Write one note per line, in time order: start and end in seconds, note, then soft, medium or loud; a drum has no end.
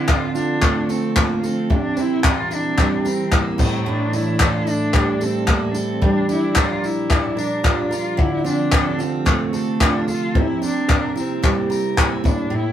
0.00 1.69 A2 medium
0.00 1.69 D3 medium
0.00 1.70 D3 medium
0.00 1.69 F3 medium
0.00 1.76 C4 medium
0.00 3.56 C4 medium
0.00 1.69 D4 medium
0.00 0.12 E4 loud
0.08 0.36 F4 loud
0.08 0.88 A4 medium
0.08 kick loud
0.08 clap loud
0.35 0.92 D4 loud
0.35 1.15 F4 medium
0.35 tambourine medium
0.62 1.76 A3 medium
0.62 kick loud
0.62 clap loud
0.89 1.21 C4 loud
0.89 1.42 A4 medium
0.89 tambourine medium
1.16 1.47 A#3 medium
1.16 1.76 F4 medium
1.16 kick loud
1.16 clap loud
1.43 1.72 C4 loud
1.43 1.76 A4 medium
1.43 tambourine medium
1.70 3.57 A#2 medium
1.70 3.58 C3 medium
1.70 5.99 E3 medium
1.70 3.57 G3 medium
1.70 2.02 D4 loud
1.70 5.99 E4 medium
1.70 kick loud
1.97 3.65 C4 medium
1.97 2.26 E4 loud
1.97 tambourine medium
2.24 2.56 F4 loud
2.24 3.04 A#4 medium
2.24 kick loud
2.24 clap loud
2.51 3.09 D4 loud
2.51 3.31 E4 medium
2.51 tambourine medium
2.78 3.89 G3 medium
2.78 kick loud
2.78 clap medium
3.05 3.37 C4 loud
3.05 3.65 A#4 medium
3.05 tambourine medium
3.31 4.17 E4 medium
3.31 kick loud
3.31 clap loud
3.36 3.63 A#3 medium
3.58 3.85 A2 medium
3.58 6.01 A2 medium
3.58 8.15 G3 medium
3.58 3.88 C4 medium
3.58 10.32 D4 medium
3.58 kick loud
3.58 tambourine medium
3.58 crash medium
3.86 6.03 A2 medium
3.86 4.17 D4 loud
4.13 6.28 D4 medium
4.13 4.44 E4 loud
4.13 tambourine medium
4.40 4.72 F4 loud
4.40 5.20 A4 medium
4.40 kick loud
4.40 clap loud
4.67 5.25 D4 loud
4.67 5.47 E4 medium
4.67 tambourine medium
4.93 6.01 G3 medium
4.93 kick loud
4.93 clap loud
5.21 5.51 C4 loud
5.21 5.73 A4 medium
5.21 tambourine medium
5.48 5.73 A#3 medium
5.48 6.08 E4 medium
5.48 kick loud
5.48 clap loud
5.71 5.79 D4 medium
5.71 6.08 A4 medium
5.71 tambourine medium
5.77 6.06 C4 medium
6.02 8.17 A#2 medium
6.02 10.32 F3 medium
6.02 8.18 G3 medium
6.02 6.31 D4 loud
6.02 10.32 G4 medium
6.02 kick loud
6.29 7.10 D4 medium
6.29 6.60 E4 loud
6.29 tambourine medium
6.56 6.86 F4 loud
6.56 7.36 A#4 medium
6.56 kick loud
6.56 clap loud
6.84 7.40 E4 loud
6.84 tambourine medium
7.10 8.44 D4 medium
7.10 kick loud
7.10 clap medium
7.37 7.65 D4 loud
7.37 7.90 A#4 medium
7.37 tambourine medium
7.64 7.95 D4 medium
7.64 8.98 F4 medium
7.64 kick loud
7.64 clap loud
7.91 8.22 F4 loud
7.91 8.24 A#4 medium
7.91 tambourine medium
8.17 12.21 C3 medium
8.17 10.35 D3 medium
8.17 10.33 A3 medium
8.17 8.47 E4 loud
8.17 kick loud
8.44 10.40 C4 medium
8.44 9.04 D4 loud
8.44 tambourine medium
8.72 9.52 A4 medium
8.72 kick loud
8.72 clap loud
8.99 9.79 F4 medium
8.99 tambourine medium
9.03 9.83 C4 medium
9.26 10.40 A3 medium
9.26 kick loud
9.26 clap medium
9.53 10.07 A4 medium
9.53 tambourine medium
9.80 10.07 D4 loud
9.80 10.40 F4 medium
9.80 kick loud
9.80 clap loud
10.08 10.40 F4 loud
10.08 10.41 A4 medium
10.08 tambourine medium
10.34 12.23 C3 medium
10.34 12.72 G3 medium
10.34 12.23 A#3 medium
10.34 12.72 E4 medium
10.34 12.72 G4 medium
10.34 kick loud
10.39 10.64 E4 loud
10.62 12.30 C4 medium
10.62 11.14 D4 loud
10.62 tambourine medium
10.88 11.69 A#4 medium
10.88 kick loud
10.88 clap loud
11.16 11.95 C4 medium
11.16 11.97 E4 medium
11.16 tambourine medium
11.43 12.53 G3 medium
11.43 kick loud
11.43 clap medium
11.70 12.30 A#4 medium
11.70 tambourine medium
11.97 12.72 E4 medium
11.97 kick loud
11.97 clap loud
12.01 12.29 C4 medium
12.24 12.49 A2 medium
12.24 12.56 D4 medium
12.24 kick loud
12.24 tambourine medium
12.50 12.72 A2 medium
12.54 12.72 E4 loud